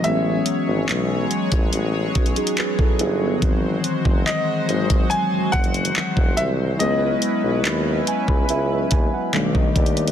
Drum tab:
HH |x---x---x---x-x-x---xxxxx---x---|x---x---x---x-x-x---xxxxx---x---|x---x---x---x---x---x---x---xxxx|
CP |--------x---------------x-------|--------x---------------x-------|--------x---------------x-------|
BD |--------------o-----o-----o-----|o-----o-------o-----o-----o-----|--------------o-----o-----o-o---|